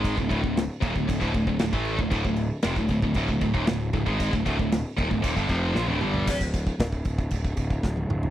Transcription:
<<
  \new Staff \with { instrumentName = "Distorted electric guitar" } { \clef bass \time 4/4 \key d \minor \tempo 4 = 115 <gis, ees gis>16 <d, a,>16 <d, a,>16 <d, a,>8 r16 <ees, bes,>16 <d, a,>16 <d, a,>16 <d, a,>16 <d, a,>16 <d, a,>16 <d, a,>16 <a, e a>8 <d, a,>16 | <d, a,>16 <d, a,>8 r16 <f, c>16 <d, a,>16 <d, a,>16 <d, a,>16 <d, a,>16 <d, a,>16 <d, a,>16 <ees, bes,>16 <d, a,>8 <d, a,>16 <gis, ees gis>16~ | <gis, ees gis>16 <d, a,>16 <d, a,>16 <d, a,>8 r16 <ees, bes,>16 <d, a,>16 <ees, bes,>16 <g, d>16 <f, c f>8 <bes, f>16 <d, a,>16 <g, d g>8 | r1 | }
  \new Staff \with { instrumentName = "Picked electric bass" } { \clef bass \time 4/4 \key d \minor gis,,16 d,,16 d,,16 d,,8 r16 ees,,16 d,,16 d,,16 d,,16 d,,16 d,,16 d,,16 a,,8 d,,16 | d,,16 d,,8 r16 f,,16 d,,16 d,,16 d,,16 d,,16 d,,16 d,,16 ees,,16 d,,8 d,,16 gis,,16~ | gis,,16 d,,16 d,,16 d,,8 r16 ees,,16 d,,16 ees,,16 g,,16 f,,8 bes,,16 d,,16 g,,8 | d,,4 d,,8 d,,8 d,,8 d,,8 d,,8 d,,8 | }
  \new DrumStaff \with { instrumentName = "Drums" } \drummode { \time 4/4 <cymc bd>16 bd16 <cymc bd>16 bd16 <cymc sn>8 <cymc bd>16 bd16 <cymc bd>16 bd16 <cymc bd>16 bd16 <cymc sn>16 bd16 cymc16 bd16 | <cymc bd>16 bd16 cymc8 <cymc sn>16 bd16 <cymc bd>16 bd16 <cymc bd>16 bd16 <cymc bd>16 bd16 <cymc sn>8 <cymc bd>16 bd16 | <cymc bd>16 bd16 <cymc bd>16 bd16 <cymc sn>8 <cymc bd>16 bd16 <cymc bd>16 bd16 <cymc bd>8 sn16 tommh16 toml16 tomfh16 | <cymc bd>16 bd16 <cymc bd>16 bd16 <cymc bd sn>16 bd16 <cymc bd>16 bd16 <cymc bd>16 bd16 <cymc bd>16 bd16 <bd sn>16 tommh16 toml16 tomfh16 | }
>>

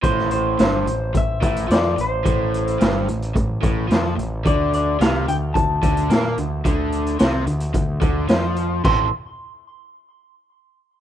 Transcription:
<<
  \new Staff \with { instrumentName = "Clean electric guitar" } { \time 4/4 \key a \minor \tempo 4 = 109 c''8 c''4. e''8 e''8 d''8 c''8~ | c''4. r2 r8 | d''8 d''8 f''8 g''8 a''2~ | a''2. r4 |
c'''8 r2. r8 | }
  \new Staff \with { instrumentName = "Overdriven electric guitar" } { \clef bass \time 4/4 \key a \minor a,4 g,8 a,8 a,8 a,8 f8 a,8 | a,4 g,8 a,8 a,8 a,8 f8 a,8 | d4 c8 d8 d8 d8 bes8 d8 | d4 c8 d8 d8 d8 f4 |
<a, e c' e' a'>8 r2. r8 | }
  \new Staff \with { instrumentName = "Picked electric bass" } { \clef bass \time 4/4 \key a \minor a,,4 g,,8 a,,8 a,,8 a,,8 f,8 a,,8 | a,,4 g,,8 a,,8 a,,8 a,,8 f,8 a,,8 | d,4 c,8 d,8 d,8 d,8 bes,8 d,8 | d,4 c,8 d,8 d,8 d,8 f,4 |
a,,8 r2. r8 | }
  \new DrumStaff \with { instrumentName = "Drums" } \drummode { \time 4/4 <hh bd>16 sn16 hh8 <hh sn>8 hh8 <hh bd>8 <hh bd>16 hh16 <hh sn>8 hh8 | <hh bd>8 hh16 hh16 <hh sn>8 hh16 hh16 <hh bd>8 <hh bd>8 <hh sn>8 hh8 | <hh bd>8 hh8 <hh sn>8 hh8 <hh bd>8 <hh bd>16 hh16 <hh sn>8 hh8 | <hh bd>8 hh16 hh16 <hh sn>8 hh16 hh16 <hh bd>8 <hh bd>8 <hh sn>8 hh8 |
<cymc bd>4 r4 r4 r4 | }
>>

